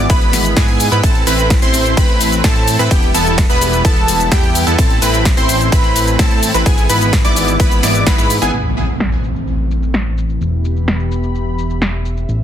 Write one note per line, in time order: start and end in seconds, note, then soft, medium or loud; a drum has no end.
0.00 1.00 E3 medium
0.00 1.02 G#3 medium
0.00 1.02 B3 medium
0.10 0.54 B3 loud
0.10 0.54 E4 medium
0.10 0.54 B4 loud
0.10 0.54 B5 loud
0.10 kick loud
0.10 closed hi-hat medium
0.10 ride medium
0.10 shaker soft
0.22 closed hi-hat soft
0.33 snare medium
0.33 open hi-hat loud
0.33 shaker medium
0.45 closed hi-hat soft
0.45 shaker soft
0.57 0.89 G#2 loud
0.57 0.89 B3 loud
0.57 0.89 E4 medium
0.57 0.89 G#4 loud
0.57 0.89 G#5 loud
0.57 kick loud
0.57 snare loud
0.57 closed hi-hat medium
0.57 ride medium
0.57 shaker soft
0.68 closed hi-hat soft
0.80 open hi-hat loud
0.80 shaker medium
0.92 1.01 G#2 loud
0.92 1.02 B3 medium
0.92 1.02 E4 medium
0.92 1.02 B4 medium
0.92 1.02 B5 medium
0.92 closed hi-hat soft
0.92 shaker soft
1.03 1.25 A1 loud
1.03 4.75 E3 medium
1.03 2.89 A3 medium
1.03 2.89 C4 medium
1.03 1.24 C4 medium
1.03 1.24 E4 medium
1.03 1.24 A4 medium
1.03 1.24 A5 loud
1.03 kick loud
1.03 closed hi-hat medium
1.03 ride medium
1.03 shaker soft
1.15 closed hi-hat soft
1.27 1.60 A1 medium
1.27 1.54 C4 loud
1.27 1.54 E4 medium
1.27 1.54 B4 loud
1.27 1.54 B5 loud
1.27 open hi-hat loud
1.27 shaker medium
1.39 closed hi-hat soft
1.39 shaker soft
1.50 kick loud
1.50 snare loud
1.50 closed hi-hat medium
1.50 ride medium
1.50 shaker soft
1.62 1.95 A1 loud
1.62 1.94 C4 loud
1.62 1.94 E4 medium
1.62 1.94 C5 loud
1.62 1.94 C6 loud
1.62 closed hi-hat soft
1.62 shaker soft
1.74 open hi-hat medium
1.74 shaker medium
1.86 closed hi-hat soft
1.86 shaker soft
1.97 2.42 A1 loud
1.97 2.41 C4 loud
1.97 2.41 E4 medium
1.97 2.41 B4 loud
1.97 2.41 B5 loud
1.97 kick loud
1.97 closed hi-hat medium
1.97 ride medium
1.97 shaker soft
2.09 closed hi-hat soft
2.21 open hi-hat loud
2.21 shaker medium
2.32 closed hi-hat soft
2.32 shaker soft
2.44 2.77 A2 loud
2.44 2.76 C4 loud
2.44 2.76 E4 medium
2.44 2.76 A4 loud
2.44 2.76 A5 loud
2.44 kick loud
2.44 snare loud
2.44 closed hi-hat medium
2.44 ride medium
2.44 shaker soft
2.56 closed hi-hat soft
2.68 open hi-hat medium
2.68 shaker medium
2.79 2.89 A2 medium
2.79 2.89 C4 medium
2.79 2.89 E4 medium
2.79 2.89 B4 medium
2.79 2.89 B5 medium
2.79 closed hi-hat soft
2.79 shaker soft
2.91 3.12 E1 loud
2.91 4.77 G3 medium
2.91 3.12 B3 medium
2.91 4.77 B3 medium
2.91 3.12 E4 medium
2.91 3.12 G4 loud
2.91 3.12 G5 loud
2.91 kick loud
2.91 closed hi-hat medium
2.91 ride medium
2.91 shaker soft
3.03 closed hi-hat soft
3.14 3.47 E1 medium
3.14 3.41 B3 loud
3.14 3.41 E4 medium
3.14 3.41 A4 loud
3.14 3.41 A5 loud
3.14 open hi-hat loud
3.14 shaker medium
3.26 closed hi-hat soft
3.26 shaker soft
3.38 kick loud
3.38 snare loud
3.38 closed hi-hat medium
3.38 ride medium
3.38 shaker soft
3.50 3.82 E1 loud
3.50 3.82 B3 loud
3.50 3.82 E4 medium
3.50 3.82 B4 loud
3.50 3.82 B5 loud
3.50 closed hi-hat soft
3.50 shaker soft
3.61 open hi-hat medium
3.61 shaker medium
3.73 closed hi-hat soft
3.73 shaker soft
3.85 4.29 B3 medium
3.85 4.29 E4 medium
3.85 4.29 A4 loud
3.85 4.29 A5 loud
3.85 kick loud
3.85 closed hi-hat medium
3.85 ride medium
3.85 shaker soft
3.97 closed hi-hat soft
4.08 open hi-hat loud
4.08 shaker medium
4.20 closed hi-hat soft
4.20 shaker soft
4.32 4.64 E2 loud
4.32 4.64 B3 loud
4.32 4.64 E4 medium
4.32 4.64 G4 loud
4.32 4.64 G5 loud
4.32 kick loud
4.32 snare loud
4.32 closed hi-hat medium
4.32 ride medium
4.32 shaker soft
4.43 closed hi-hat soft
4.55 open hi-hat loud
4.55 shaker medium
4.67 4.76 E2 loud
4.67 4.77 B3 medium
4.67 4.77 E4 medium
4.67 4.77 A4 medium
4.67 4.77 A5 medium
4.67 closed hi-hat soft
4.67 shaker soft
4.78 5.00 A1 loud
4.78 6.64 E3 medium
4.78 6.64 A3 medium
4.78 4.99 C4 medium
4.78 6.64 C4 medium
4.78 4.99 A4 medium
4.78 4.99 A5 loud
4.78 kick loud
4.78 closed hi-hat medium
4.78 ride medium
4.78 shaker soft
4.90 closed hi-hat soft
5.02 5.35 A1 loud
5.02 5.29 C4 loud
5.02 5.29 E4 medium
5.02 5.29 B4 loud
5.02 5.29 B5 loud
5.02 open hi-hat loud
5.02 shaker medium
5.14 closed hi-hat soft
5.14 shaker soft
5.25 kick loud
5.25 snare loud
5.25 closed hi-hat medium
5.25 ride medium
5.25 shaker soft
5.37 5.70 A1 loud
5.37 5.69 C4 loud
5.37 5.69 E4 medium
5.37 5.69 C5 loud
5.37 5.69 C6 loud
5.37 closed hi-hat soft
5.37 shaker soft
5.49 open hi-hat medium
5.49 shaker medium
5.61 closed hi-hat soft
5.61 shaker soft
5.72 6.16 C4 loud
5.72 6.16 E4 medium
5.72 6.16 B4 loud
5.72 6.16 B5 loud
5.72 kick loud
5.72 closed hi-hat medium
5.72 ride medium
5.72 shaker soft
5.84 closed hi-hat soft
5.96 open hi-hat loud
5.96 shaker medium
6.08 closed hi-hat soft
6.08 shaker soft
6.19 6.51 C4 loud
6.19 6.51 E4 medium
6.19 6.52 A4 loud
6.19 6.51 A5 loud
6.19 kick loud
6.19 snare loud
6.19 closed hi-hat medium
6.19 ride medium
6.19 shaker soft
6.31 closed hi-hat soft
6.43 open hi-hat medium
6.43 shaker medium
6.54 6.64 A1 loud
6.54 6.64 C4 medium
6.54 6.64 E4 medium
6.54 6.64 B4 medium
6.54 6.64 B5 medium
6.54 closed hi-hat soft
6.54 shaker soft
6.66 8.52 E3 medium
6.66 8.52 G#3 medium
6.66 8.52 B3 medium
6.66 6.87 B3 medium
6.66 6.87 E4 medium
6.66 6.87 G#4 medium
6.66 6.87 G#5 loud
6.66 kick loud
6.66 closed hi-hat medium
6.66 ride medium
6.66 shaker soft
6.78 closed hi-hat soft
6.78 shaker soft
6.89 7.22 G#1 loud
6.89 7.16 B3 loud
6.89 7.16 E4 medium
6.89 7.16 B4 loud
6.89 7.16 B5 loud
6.89 open hi-hat loud
6.89 shaker medium
7.01 closed hi-hat soft
7.01 shaker soft
7.13 kick loud
7.13 snare loud
7.13 closed hi-hat medium
7.13 ride medium
7.13 shaker soft
7.25 7.57 G#1 loud
7.25 7.57 B3 loud
7.25 7.57 E4 medium
7.25 7.57 D5 loud
7.25 7.57 D6 loud
7.25 closed hi-hat soft
7.25 shaker soft
7.36 open hi-hat medium
7.36 shaker medium
7.48 closed hi-hat soft
7.48 shaker soft
7.60 7.81 B3 loud
7.60 7.81 E4 medium
7.60 7.81 B4 loud
7.60 7.81 B5 loud
7.60 kick loud
7.60 closed hi-hat medium
7.60 ride medium
7.60 shaker soft
7.71 closed hi-hat soft
7.71 shaker soft
7.83 8.04 G#1 loud
7.83 8.04 B3 medium
7.83 8.04 E4 medium
7.83 8.04 D5 medium
7.83 8.04 D6 medium
7.83 snare medium
7.83 open hi-hat loud
7.83 shaker medium
7.95 closed hi-hat soft
7.95 shaker soft
8.07 8.16 G#1 loud
8.07 8.17 B3 medium
8.07 8.17 E4 medium
8.07 8.17 B4 loud
8.07 8.17 B5 loud
8.07 kick loud
8.07 snare loud
8.07 closed hi-hat medium
8.07 ride medium
8.07 shaker soft
8.18 8.39 G#2 loud
8.18 8.35 B3 medium
8.18 8.35 E4 medium
8.18 8.35 B4 medium
8.18 8.35 B5 medium
8.18 closed hi-hat soft
8.18 shaker soft
8.30 open hi-hat medium
8.30 shaker medium
8.42 8.51 G#1 medium
8.42 8.52 B3 medium
8.42 8.52 E4 medium
8.42 8.52 G#4 loud
8.42 8.52 G#5 loud
8.42 closed hi-hat soft
8.42 shaker soft
8.53 10.39 A1 medium
8.53 12.25 E3 medium
8.53 10.39 A3 medium
8.53 10.39 C4 medium
8.53 impact medium
8.77 shaker medium
8.89 shaker soft
9.00 snare loud
9.00 shaker soft
9.12 shaker soft
9.24 shaker medium
9.36 shaker soft
9.48 shaker soft
9.71 shaker medium
9.83 shaker soft
9.94 snare loud
9.94 shaker soft
10.18 shaker medium
10.30 shaker soft
10.41 12.26 E1 medium
10.41 12.27 B3 medium
10.41 12.27 G4 medium
10.41 12.44 E5 medium
10.41 12.27 B5 medium
10.41 shaker soft
10.65 shaker medium
10.76 shaker soft
10.88 snare loud
10.88 shaker soft
11.00 shaker soft
11.12 shaker medium
11.23 shaker soft
11.35 shaker soft
11.58 shaker medium
11.70 shaker soft
11.82 snare loud
11.82 shaker soft
12.05 shaker medium
12.17 shaker soft
12.28 12.44 A1 medium
12.28 12.44 A4 medium
12.28 12.44 C5 medium
12.28 riser medium
12.28 shaker soft